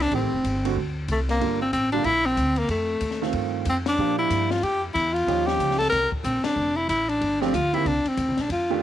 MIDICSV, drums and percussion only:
0, 0, Header, 1, 2, 480
1, 0, Start_track
1, 0, Key_signature, -1, "major"
1, 0, Tempo, 322581
1, 177, Time_signature, 4, 2, 24, 8
1, 13130, End_track
2, 0, Start_track
2, 0, Title_t, "Drums"
2, 3, Note_on_c, 9, 51, 45
2, 10, Note_on_c, 9, 38, 43
2, 152, Note_off_c, 9, 51, 0
2, 159, Note_off_c, 9, 38, 0
2, 172, Note_on_c, 9, 51, 54
2, 175, Note_on_c, 9, 36, 19
2, 321, Note_off_c, 9, 51, 0
2, 323, Note_off_c, 9, 36, 0
2, 659, Note_on_c, 9, 36, 22
2, 662, Note_on_c, 9, 44, 50
2, 662, Note_on_c, 9, 51, 63
2, 808, Note_off_c, 9, 36, 0
2, 811, Note_off_c, 9, 44, 0
2, 811, Note_off_c, 9, 51, 0
2, 967, Note_on_c, 9, 51, 63
2, 1116, Note_off_c, 9, 51, 0
2, 1139, Note_on_c, 9, 36, 20
2, 1288, Note_off_c, 9, 36, 0
2, 1612, Note_on_c, 9, 44, 52
2, 1612, Note_on_c, 9, 51, 58
2, 1615, Note_on_c, 9, 36, 20
2, 1761, Note_off_c, 9, 44, 0
2, 1761, Note_off_c, 9, 51, 0
2, 1764, Note_off_c, 9, 36, 0
2, 1919, Note_on_c, 9, 38, 34
2, 1922, Note_on_c, 9, 51, 45
2, 2068, Note_off_c, 9, 38, 0
2, 2071, Note_off_c, 9, 51, 0
2, 2094, Note_on_c, 9, 36, 23
2, 2103, Note_on_c, 9, 51, 55
2, 2243, Note_off_c, 9, 36, 0
2, 2252, Note_off_c, 9, 51, 0
2, 2569, Note_on_c, 9, 36, 21
2, 2573, Note_on_c, 9, 44, 54
2, 2573, Note_on_c, 9, 51, 61
2, 2718, Note_off_c, 9, 36, 0
2, 2722, Note_off_c, 9, 44, 0
2, 2722, Note_off_c, 9, 51, 0
2, 2858, Note_on_c, 9, 51, 44
2, 3007, Note_off_c, 9, 51, 0
2, 3040, Note_on_c, 9, 51, 60
2, 3043, Note_on_c, 9, 36, 19
2, 3189, Note_off_c, 9, 51, 0
2, 3191, Note_off_c, 9, 36, 0
2, 3525, Note_on_c, 9, 36, 18
2, 3530, Note_on_c, 9, 44, 50
2, 3530, Note_on_c, 9, 51, 57
2, 3674, Note_off_c, 9, 36, 0
2, 3679, Note_off_c, 9, 44, 0
2, 3679, Note_off_c, 9, 51, 0
2, 3811, Note_on_c, 9, 51, 47
2, 3960, Note_off_c, 9, 51, 0
2, 3998, Note_on_c, 9, 51, 59
2, 4001, Note_on_c, 9, 36, 17
2, 4147, Note_off_c, 9, 51, 0
2, 4150, Note_off_c, 9, 36, 0
2, 4474, Note_on_c, 9, 44, 53
2, 4474, Note_on_c, 9, 51, 63
2, 4480, Note_on_c, 9, 36, 22
2, 4622, Note_off_c, 9, 44, 0
2, 4622, Note_off_c, 9, 51, 0
2, 4626, Note_on_c, 9, 38, 28
2, 4629, Note_off_c, 9, 36, 0
2, 4775, Note_off_c, 9, 38, 0
2, 4798, Note_on_c, 9, 38, 44
2, 4947, Note_off_c, 9, 38, 0
2, 4951, Note_on_c, 9, 51, 58
2, 4963, Note_on_c, 9, 36, 25
2, 5100, Note_off_c, 9, 51, 0
2, 5111, Note_off_c, 9, 36, 0
2, 5436, Note_on_c, 9, 44, 48
2, 5436, Note_on_c, 9, 51, 63
2, 5445, Note_on_c, 9, 36, 20
2, 5585, Note_off_c, 9, 44, 0
2, 5585, Note_off_c, 9, 51, 0
2, 5594, Note_off_c, 9, 36, 0
2, 5743, Note_on_c, 9, 38, 83
2, 5746, Note_on_c, 9, 51, 68
2, 5892, Note_off_c, 9, 38, 0
2, 5895, Note_off_c, 9, 51, 0
2, 6405, Note_on_c, 9, 44, 59
2, 6405, Note_on_c, 9, 51, 66
2, 6406, Note_on_c, 9, 36, 19
2, 6554, Note_off_c, 9, 44, 0
2, 6554, Note_off_c, 9, 51, 0
2, 6555, Note_off_c, 9, 36, 0
2, 6707, Note_on_c, 9, 38, 53
2, 6856, Note_off_c, 9, 38, 0
2, 6886, Note_on_c, 9, 36, 18
2, 6892, Note_on_c, 9, 51, 57
2, 7035, Note_off_c, 9, 36, 0
2, 7040, Note_off_c, 9, 51, 0
2, 7368, Note_on_c, 9, 36, 21
2, 7372, Note_on_c, 9, 44, 53
2, 7372, Note_on_c, 9, 51, 66
2, 7516, Note_off_c, 9, 36, 0
2, 7521, Note_off_c, 9, 44, 0
2, 7521, Note_off_c, 9, 51, 0
2, 7680, Note_on_c, 9, 51, 45
2, 7829, Note_off_c, 9, 51, 0
2, 7846, Note_on_c, 9, 36, 22
2, 7860, Note_on_c, 9, 51, 59
2, 7995, Note_off_c, 9, 36, 0
2, 8009, Note_off_c, 9, 51, 0
2, 8149, Note_on_c, 9, 38, 52
2, 8298, Note_off_c, 9, 38, 0
2, 8329, Note_on_c, 9, 36, 24
2, 8335, Note_on_c, 9, 44, 51
2, 8335, Note_on_c, 9, 51, 61
2, 8478, Note_off_c, 9, 36, 0
2, 8484, Note_off_c, 9, 44, 0
2, 8484, Note_off_c, 9, 51, 0
2, 8495, Note_on_c, 9, 38, 28
2, 8636, Note_on_c, 9, 51, 45
2, 8644, Note_off_c, 9, 38, 0
2, 8651, Note_on_c, 9, 38, 40
2, 8785, Note_off_c, 9, 51, 0
2, 8800, Note_off_c, 9, 38, 0
2, 8809, Note_on_c, 9, 38, 35
2, 8810, Note_on_c, 9, 36, 20
2, 8811, Note_on_c, 9, 51, 60
2, 8957, Note_off_c, 9, 38, 0
2, 8959, Note_off_c, 9, 36, 0
2, 8960, Note_off_c, 9, 51, 0
2, 9108, Note_on_c, 9, 36, 51
2, 9257, Note_off_c, 9, 36, 0
2, 9290, Note_on_c, 9, 36, 26
2, 9291, Note_on_c, 9, 44, 58
2, 9291, Note_on_c, 9, 51, 63
2, 9439, Note_off_c, 9, 36, 0
2, 9440, Note_off_c, 9, 44, 0
2, 9440, Note_off_c, 9, 51, 0
2, 9583, Note_on_c, 9, 38, 80
2, 9586, Note_on_c, 9, 51, 64
2, 9732, Note_off_c, 9, 38, 0
2, 9735, Note_off_c, 9, 51, 0
2, 10254, Note_on_c, 9, 36, 20
2, 10254, Note_on_c, 9, 44, 47
2, 10254, Note_on_c, 9, 51, 64
2, 10402, Note_off_c, 9, 36, 0
2, 10403, Note_off_c, 9, 44, 0
2, 10403, Note_off_c, 9, 51, 0
2, 10554, Note_on_c, 9, 51, 41
2, 10703, Note_off_c, 9, 51, 0
2, 10734, Note_on_c, 9, 36, 20
2, 10736, Note_on_c, 9, 51, 57
2, 10882, Note_off_c, 9, 36, 0
2, 10885, Note_off_c, 9, 51, 0
2, 11038, Note_on_c, 9, 38, 43
2, 11187, Note_off_c, 9, 38, 0
2, 11212, Note_on_c, 9, 36, 22
2, 11218, Note_on_c, 9, 44, 57
2, 11218, Note_on_c, 9, 51, 62
2, 11361, Note_off_c, 9, 36, 0
2, 11366, Note_off_c, 9, 44, 0
2, 11366, Note_off_c, 9, 51, 0
2, 11512, Note_on_c, 9, 51, 46
2, 11661, Note_off_c, 9, 51, 0
2, 11689, Note_on_c, 9, 36, 22
2, 11696, Note_on_c, 9, 51, 53
2, 11838, Note_off_c, 9, 36, 0
2, 11845, Note_off_c, 9, 51, 0
2, 11987, Note_on_c, 9, 51, 47
2, 12136, Note_off_c, 9, 51, 0
2, 12163, Note_on_c, 9, 44, 53
2, 12163, Note_on_c, 9, 51, 60
2, 12167, Note_on_c, 9, 36, 20
2, 12312, Note_off_c, 9, 44, 0
2, 12312, Note_off_c, 9, 51, 0
2, 12316, Note_off_c, 9, 36, 0
2, 12459, Note_on_c, 9, 38, 33
2, 12462, Note_on_c, 9, 51, 44
2, 12608, Note_off_c, 9, 38, 0
2, 12611, Note_off_c, 9, 51, 0
2, 12645, Note_on_c, 9, 36, 19
2, 12645, Note_on_c, 9, 51, 61
2, 12794, Note_off_c, 9, 36, 0
2, 12794, Note_off_c, 9, 51, 0
2, 13130, End_track
0, 0, End_of_file